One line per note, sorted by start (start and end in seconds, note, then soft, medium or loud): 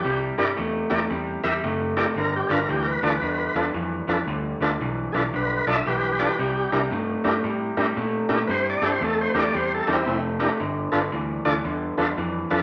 0.00 0.20 G4 medium
0.04 0.31 C2 medium
0.04 0.35 C3 medium
0.04 0.35 G3 medium
0.38 0.53 G2 medium
0.38 0.55 C3 medium
0.38 0.56 G3 medium
0.38 0.48 E4 medium
0.38 0.48 G4 medium
0.38 0.48 A#4 medium
0.38 0.48 D5 loud
0.57 0.84 E2 medium
0.57 0.88 C3 medium
0.57 0.88 A3 medium
0.90 1.06 E2 medium
0.90 1.08 C3 medium
0.90 1.08 A3 medium
0.90 1.00 E4 medium
0.90 1.00 G4 medium
0.90 1.00 A#4 medium
0.90 1.00 D5 medium
1.10 1.37 E2 medium
1.10 1.41 C3 medium
1.10 1.41 G3 medium
1.43 1.59 E2 medium
1.43 1.61 C3 medium
1.43 1.62 G3 medium
1.43 1.54 E4 medium
1.43 1.53 G4 medium
1.43 1.53 A#4 medium
1.43 1.53 E5 medium
1.63 2.04 F#1 medium
1.63 1.94 C3 medium
1.63 1.94 A3 medium
1.97 2.14 C3 medium
1.97 2.14 A3 medium
1.97 2.06 E4 medium
1.97 2.06 G4 medium
1.97 2.06 A#4 medium
1.97 2.07 D5 loud
2.16 2.42 G1 medium
2.16 2.47 G2 medium
2.16 2.47 D3 medium
2.16 2.34 A#4 loud
2.36 2.52 G4 medium
2.49 2.65 G1 medium
2.49 2.67 G2 medium
2.49 2.67 D3 medium
2.49 2.60 D4 medium
2.49 2.60 F4 medium
2.49 2.53 A4 medium
2.49 2.60 B4 medium
2.53 2.69 A#4 medium
2.69 2.95 D2 medium
2.69 2.99 G2 medium
2.69 2.99 E3 loud
2.69 2.87 G4 medium
2.83 2.89 A#4 medium
2.88 3.55 B4 loud
3.02 3.18 D2 medium
3.02 3.20 G2 medium
3.02 3.20 E3 medium
3.02 3.12 D4 medium
3.02 3.13 F4 medium
3.02 3.12 A4 medium
3.02 3.13 D5 medium
3.22 3.48 E2 medium
3.22 3.52 G2 medium
3.22 3.52 D3 medium
3.55 3.70 E2 medium
3.55 3.73 G2 medium
3.55 3.73 D3 medium
3.55 3.65 D4 medium
3.55 3.65 F4 medium
3.55 3.65 A4 medium
3.55 3.65 B4 medium
3.74 4.00 F2 medium
3.74 4.05 G2 medium
3.74 4.05 E3 medium
4.07 4.23 F2 medium
4.07 4.25 G2 medium
4.07 4.25 E3 medium
4.07 4.18 D4 medium
4.07 4.18 F4 medium
4.07 4.18 A4 medium
4.07 4.18 B4 medium
4.27 4.53 D2 medium
4.27 4.58 G2 medium
4.27 4.58 D3 medium
4.60 4.75 D2 medium
4.60 4.78 G2 medium
4.60 4.78 D3 medium
4.60 4.71 D4 medium
4.60 4.71 F4 medium
4.60 4.71 A4 medium
4.60 4.71 B4 loud
4.80 5.06 B1 medium
4.80 5.11 G2 medium
4.80 5.11 E3 loud
5.12 5.29 B1 medium
5.12 5.31 G2 medium
5.12 5.32 E3 medium
5.12 5.24 D4 medium
5.12 5.24 F4 medium
5.12 5.14 G#4 medium
5.12 5.23 A4 medium
5.12 5.24 B4 medium
5.33 5.59 B1 medium
5.33 5.63 G2 medium
5.33 5.64 D3 medium
5.33 5.67 B4 medium
5.67 5.82 B1 medium
5.67 5.84 G2 medium
5.67 5.84 D3 medium
5.67 5.76 D4 medium
5.67 5.76 F4 medium
5.67 5.76 A4 medium
5.67 5.76 D5 medium
5.67 5.87 E5 medium
5.86 6.27 B1 medium
5.86 6.16 G2 medium
5.86 6.16 E3 medium
5.86 6.71 G4 medium
5.86 6.38 B4 medium
6.19 6.37 G2 medium
6.19 6.37 E3 medium
6.19 6.29 D4 medium
6.19 6.29 F4 medium
6.19 6.29 A4 medium
6.19 6.29 D5 medium
6.39 6.65 C2 medium
6.39 6.69 C3 medium
6.39 6.69 G3 loud
6.72 6.87 C2 medium
6.72 6.89 C3 medium
6.72 6.90 G3 medium
6.72 6.82 D4 medium
6.72 6.82 E4 medium
6.72 6.82 G4 medium
6.72 6.82 A#4 medium
6.91 7.17 G2 medium
6.91 7.21 C3 medium
6.91 7.22 A3 medium
7.24 7.39 G2 medium
7.24 7.42 C3 medium
7.24 7.42 A3 medium
7.24 7.34 D4 medium
7.24 7.34 E4 medium
7.24 7.34 G4 medium
7.24 7.34 A#4 loud
7.44 7.70 A2 medium
7.44 7.74 C3 medium
7.44 7.74 G3 medium
7.77 7.92 A2 medium
7.77 7.94 C3 medium
7.77 7.95 G3 medium
7.77 7.87 D4 medium
7.77 7.87 E4 medium
7.77 7.87 G4 medium
7.77 7.87 A#4 medium
7.96 8.22 A#2 medium
7.96 8.27 C3 medium
7.96 8.27 A3 medium
8.29 8.45 A#2 medium
8.29 8.47 C3 medium
8.29 8.47 A3 medium
8.29 8.39 D4 medium
8.29 8.39 E4 medium
8.29 8.39 G4 medium
8.29 8.39 A#4 medium
8.47 8.74 G2 medium
8.47 8.79 C3 medium
8.47 8.79 G3 medium
8.47 8.51 B4 medium
8.47 8.67 C5 loud
8.70 8.85 D5 medium
8.82 8.97 G2 medium
8.82 8.99 C3 medium
8.82 9.00 G3 medium
8.82 8.92 D4 medium
8.82 8.92 E4 medium
8.82 8.92 G4 medium
8.82 8.92 A4 medium
8.86 9.02 C5 medium
9.01 9.27 E2 medium
9.01 9.32 C3 medium
9.01 9.32 A3 medium
9.01 9.20 A4 medium
9.21 9.37 C5 medium
9.34 9.49 E2 medium
9.34 9.52 C3 medium
9.34 9.53 A3 medium
9.34 9.44 D4 medium
9.34 9.44 E4 medium
9.34 9.44 G4 medium
9.34 9.44 A#4 medium
9.39 9.55 D5 loud
9.54 9.80 E2 medium
9.54 9.84 C3 medium
9.54 9.84 G3 medium
9.54 9.72 C5 medium
9.74 9.90 A4 medium
9.87 10.03 E2 medium
9.87 10.05 C3 medium
9.87 10.05 G3 medium
9.87 9.97 D4 medium
9.87 9.92 E4 medium
9.87 9.97 G4 medium
9.87 9.97 A#4 medium
9.92 10.18 C4 loud
9.92 10.19 E4 loud
10.07 10.47 F1 medium
10.07 10.37 C3 medium
10.07 10.37 A3 medium
10.39 10.57 C3 medium
10.39 10.57 A3 medium
10.39 10.50 D4 medium
10.39 10.50 E4 medium
10.39 10.50 G4 medium
10.39 10.50 A#4 loud
10.60 10.86 G1 medium
10.60 10.90 G2 medium
10.60 10.90 D3 medium
10.92 11.08 G1 medium
10.92 11.10 G2 medium
10.92 11.11 D3 medium
10.92 11.02 D4 medium
10.92 11.02 F4 medium
10.92 11.02 A4 medium
10.92 11.02 B4 loud
11.12 11.38 D2 medium
11.12 11.42 G2 medium
11.12 11.42 E3 loud
11.45 11.61 D2 medium
11.45 11.62 G2 medium
11.45 11.63 E3 medium
11.45 11.55 D4 medium
11.45 11.55 F4 medium
11.45 11.55 A4 medium
11.45 11.55 D5 loud
11.64 11.91 E2 loud
11.64 11.95 G2 medium
11.64 11.95 D3 medium
11.97 12.13 E2 medium
11.97 12.15 G2 medium
11.97 12.16 D3 medium
11.97 12.07 D4 medium
11.97 12.07 F4 medium
11.97 12.08 A4 medium
11.97 12.07 B4 medium
12.18 12.43 F2 medium
12.18 12.48 G2 medium
12.18 12.48 E3 medium
12.50 12.63 F2 medium
12.50 12.63 G2 medium
12.50 12.63 E3 medium
12.50 12.60 D4 medium
12.50 12.60 F4 medium
12.50 12.60 A4 medium
12.50 12.60 B4 loud